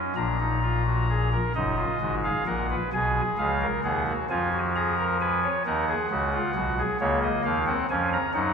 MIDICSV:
0, 0, Header, 1, 2, 480
1, 0, Start_track
1, 0, Key_signature, -6, "minor"
1, 0, Tempo, 916031
1, 818, Time_signature, 6, 3, 24, 8
1, 2727, Tempo, 892857
1, 4517, End_track
2, 0, Start_track
2, 0, Title_t, "Pipe organ"
2, 0, Program_c, 0, 19
2, 0, Note_on_c, 0, 61, 57
2, 70, Note_off_c, 0, 61, 0
2, 84, Note_on_c, 0, 82, 57
2, 85, Note_on_c, 0, 34, 61
2, 85, Note_on_c, 0, 46, 56
2, 85, Note_on_c, 0, 62, 59
2, 191, Note_off_c, 0, 62, 0
2, 211, Note_on_c, 0, 63, 54
2, 315, Note_off_c, 0, 63, 0
2, 330, Note_on_c, 0, 65, 59
2, 435, Note_off_c, 0, 65, 0
2, 452, Note_on_c, 0, 66, 57
2, 558, Note_off_c, 0, 66, 0
2, 573, Note_on_c, 0, 68, 58
2, 679, Note_off_c, 0, 68, 0
2, 693, Note_on_c, 0, 70, 59
2, 713, Note_off_c, 0, 82, 0
2, 714, Note_off_c, 0, 34, 0
2, 714, Note_off_c, 0, 46, 0
2, 799, Note_off_c, 0, 70, 0
2, 812, Note_on_c, 0, 30, 70
2, 813, Note_on_c, 0, 63, 66
2, 814, Note_on_c, 0, 42, 61
2, 814, Note_on_c, 0, 75, 87
2, 919, Note_off_c, 0, 63, 0
2, 930, Note_on_c, 0, 65, 56
2, 963, Note_off_c, 0, 30, 0
2, 965, Note_off_c, 0, 42, 0
2, 1037, Note_off_c, 0, 65, 0
2, 1052, Note_on_c, 0, 32, 62
2, 1053, Note_on_c, 0, 66, 58
2, 1054, Note_on_c, 0, 44, 63
2, 1125, Note_off_c, 0, 75, 0
2, 1158, Note_off_c, 0, 66, 0
2, 1173, Note_on_c, 0, 77, 77
2, 1174, Note_on_c, 0, 68, 69
2, 1202, Note_off_c, 0, 32, 0
2, 1204, Note_off_c, 0, 44, 0
2, 1278, Note_off_c, 0, 77, 0
2, 1279, Note_off_c, 0, 68, 0
2, 1292, Note_on_c, 0, 70, 58
2, 1293, Note_on_c, 0, 46, 62
2, 1293, Note_on_c, 0, 78, 71
2, 1295, Note_on_c, 0, 34, 61
2, 1397, Note_off_c, 0, 70, 0
2, 1414, Note_on_c, 0, 71, 58
2, 1441, Note_off_c, 0, 78, 0
2, 1442, Note_off_c, 0, 46, 0
2, 1443, Note_off_c, 0, 34, 0
2, 1517, Note_off_c, 0, 71, 0
2, 1534, Note_on_c, 0, 35, 64
2, 1535, Note_on_c, 0, 68, 61
2, 1536, Note_on_c, 0, 80, 75
2, 1537, Note_on_c, 0, 47, 67
2, 1681, Note_off_c, 0, 35, 0
2, 1682, Note_off_c, 0, 80, 0
2, 1683, Note_off_c, 0, 47, 0
2, 1772, Note_on_c, 0, 37, 66
2, 1772, Note_on_c, 0, 77, 80
2, 1774, Note_on_c, 0, 49, 61
2, 1840, Note_off_c, 0, 68, 0
2, 1894, Note_on_c, 0, 70, 60
2, 1919, Note_off_c, 0, 37, 0
2, 1919, Note_off_c, 0, 77, 0
2, 1920, Note_off_c, 0, 49, 0
2, 1995, Note_off_c, 0, 70, 0
2, 2012, Note_on_c, 0, 51, 68
2, 2012, Note_on_c, 0, 68, 62
2, 2012, Note_on_c, 0, 78, 73
2, 2013, Note_on_c, 0, 39, 72
2, 2114, Note_off_c, 0, 68, 0
2, 2130, Note_on_c, 0, 66, 66
2, 2160, Note_off_c, 0, 39, 0
2, 2160, Note_off_c, 0, 51, 0
2, 2160, Note_off_c, 0, 78, 0
2, 2232, Note_off_c, 0, 66, 0
2, 2252, Note_on_c, 0, 41, 75
2, 2253, Note_on_c, 0, 53, 73
2, 2253, Note_on_c, 0, 65, 73
2, 2254, Note_on_c, 0, 80, 88
2, 2354, Note_off_c, 0, 65, 0
2, 2371, Note_on_c, 0, 66, 64
2, 2401, Note_off_c, 0, 80, 0
2, 2473, Note_off_c, 0, 66, 0
2, 2492, Note_on_c, 0, 68, 67
2, 2492, Note_on_c, 0, 82, 81
2, 2593, Note_off_c, 0, 68, 0
2, 2611, Note_on_c, 0, 70, 67
2, 2639, Note_off_c, 0, 82, 0
2, 2712, Note_off_c, 0, 70, 0
2, 2726, Note_on_c, 0, 71, 66
2, 2729, Note_on_c, 0, 80, 78
2, 2831, Note_off_c, 0, 71, 0
2, 2852, Note_on_c, 0, 73, 62
2, 2869, Note_off_c, 0, 41, 0
2, 2869, Note_off_c, 0, 53, 0
2, 2879, Note_off_c, 0, 80, 0
2, 2955, Note_off_c, 0, 73, 0
2, 2973, Note_on_c, 0, 51, 67
2, 2973, Note_on_c, 0, 70, 64
2, 2973, Note_on_c, 0, 78, 84
2, 2974, Note_on_c, 0, 39, 65
2, 3075, Note_off_c, 0, 70, 0
2, 3093, Note_on_c, 0, 68, 72
2, 3121, Note_off_c, 0, 51, 0
2, 3122, Note_off_c, 0, 39, 0
2, 3195, Note_off_c, 0, 68, 0
2, 3211, Note_on_c, 0, 49, 68
2, 3211, Note_on_c, 0, 66, 69
2, 3212, Note_on_c, 0, 37, 69
2, 3314, Note_off_c, 0, 66, 0
2, 3330, Note_on_c, 0, 65, 64
2, 3359, Note_off_c, 0, 49, 0
2, 3360, Note_off_c, 0, 37, 0
2, 3434, Note_off_c, 0, 65, 0
2, 3449, Note_on_c, 0, 66, 76
2, 3450, Note_on_c, 0, 47, 71
2, 3451, Note_on_c, 0, 35, 71
2, 3553, Note_off_c, 0, 66, 0
2, 3576, Note_on_c, 0, 68, 70
2, 3592, Note_off_c, 0, 78, 0
2, 3599, Note_off_c, 0, 47, 0
2, 3600, Note_off_c, 0, 35, 0
2, 3677, Note_off_c, 0, 68, 0
2, 3693, Note_on_c, 0, 73, 82
2, 3694, Note_on_c, 0, 37, 84
2, 3694, Note_on_c, 0, 49, 83
2, 3695, Note_on_c, 0, 58, 87
2, 3796, Note_off_c, 0, 73, 0
2, 3814, Note_on_c, 0, 75, 72
2, 3842, Note_off_c, 0, 37, 0
2, 3842, Note_off_c, 0, 49, 0
2, 3916, Note_off_c, 0, 75, 0
2, 3932, Note_on_c, 0, 39, 73
2, 3932, Note_on_c, 0, 51, 70
2, 3934, Note_on_c, 0, 77, 77
2, 4003, Note_off_c, 0, 58, 0
2, 4035, Note_off_c, 0, 77, 0
2, 4051, Note_on_c, 0, 60, 88
2, 4053, Note_on_c, 0, 78, 77
2, 4080, Note_off_c, 0, 39, 0
2, 4080, Note_off_c, 0, 51, 0
2, 4154, Note_off_c, 0, 60, 0
2, 4155, Note_off_c, 0, 78, 0
2, 4175, Note_on_c, 0, 41, 68
2, 4176, Note_on_c, 0, 53, 71
2, 4176, Note_on_c, 0, 61, 83
2, 4176, Note_on_c, 0, 80, 64
2, 4276, Note_off_c, 0, 80, 0
2, 4298, Note_on_c, 0, 82, 73
2, 4322, Note_off_c, 0, 41, 0
2, 4322, Note_off_c, 0, 53, 0
2, 4322, Note_off_c, 0, 61, 0
2, 4397, Note_off_c, 0, 82, 0
2, 4411, Note_on_c, 0, 63, 85
2, 4413, Note_on_c, 0, 42, 67
2, 4413, Note_on_c, 0, 54, 68
2, 4414, Note_on_c, 0, 78, 70
2, 4517, Note_off_c, 0, 42, 0
2, 4517, Note_off_c, 0, 54, 0
2, 4517, Note_off_c, 0, 63, 0
2, 4517, Note_off_c, 0, 78, 0
2, 4517, End_track
0, 0, End_of_file